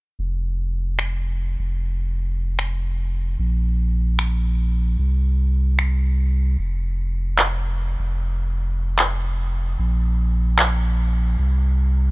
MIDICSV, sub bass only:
0, 0, Header, 1, 2, 480
1, 0, Start_track
1, 0, Tempo, 400000
1, 226, Time_signature, 4, 2, 24, 8
1, 14536, End_track
2, 0, Start_track
2, 0, Title_t, "Sub bass"
2, 0, Program_c, 0, 38
2, 226, Note_on_c, 0, 29, 81
2, 1882, Note_off_c, 0, 29, 0
2, 1906, Note_on_c, 0, 29, 84
2, 4042, Note_off_c, 0, 29, 0
2, 4067, Note_on_c, 0, 34, 83
2, 5963, Note_off_c, 0, 34, 0
2, 5985, Note_on_c, 0, 36, 82
2, 7882, Note_off_c, 0, 36, 0
2, 7907, Note_on_c, 0, 29, 81
2, 9562, Note_off_c, 0, 29, 0
2, 9586, Note_on_c, 0, 29, 83
2, 11722, Note_off_c, 0, 29, 0
2, 11746, Note_on_c, 0, 34, 84
2, 13642, Note_off_c, 0, 34, 0
2, 13666, Note_on_c, 0, 36, 84
2, 14536, Note_off_c, 0, 36, 0
2, 14536, End_track
0, 0, End_of_file